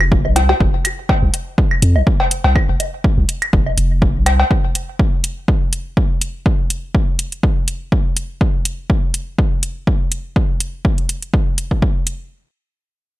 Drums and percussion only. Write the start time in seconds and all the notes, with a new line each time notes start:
0.01 claves
0.12 kick
0.25 low woodblock
0.36 closed hi-hat, cowbell
0.49 cowbell
0.60 kick
0.85 closed hi-hat, claves
1.09 kick, cowbell, low woodblock
1.34 closed hi-hat
1.58 kick
1.71 claves
1.82 closed hi-hat
1.96 low woodblock
2.07 kick
2.20 cowbell
2.31 closed hi-hat
2.44 cowbell
2.56 kick, claves
2.80 closed hi-hat, low woodblock
3.04 kick
3.29 closed hi-hat
3.42 closed hi-hat, claves
3.53 kick
3.66 low woodblock
3.78 closed hi-hat
4.02 kick
4.26 closed hi-hat, cowbell, claves
4.40 cowbell
4.51 kick
4.75 closed hi-hat
4.99 kick
5.24 closed hi-hat
5.48 kick
5.73 closed hi-hat
5.97 kick
6.21 closed hi-hat
6.46 kick
6.70 closed hi-hat
6.95 kick
7.19 closed hi-hat
7.32 closed hi-hat
7.43 kick
7.68 closed hi-hat
7.92 kick
8.17 closed hi-hat
8.41 kick
8.65 closed hi-hat
8.90 kick
9.14 closed hi-hat
9.38 kick
9.63 closed hi-hat
9.87 kick
10.12 closed hi-hat
10.36 kick
10.60 closed hi-hat
10.85 kick
10.98 closed hi-hat
11.09 closed hi-hat
11.22 closed hi-hat
11.34 kick
11.58 closed hi-hat
11.71 kick
11.82 kick
12.07 closed hi-hat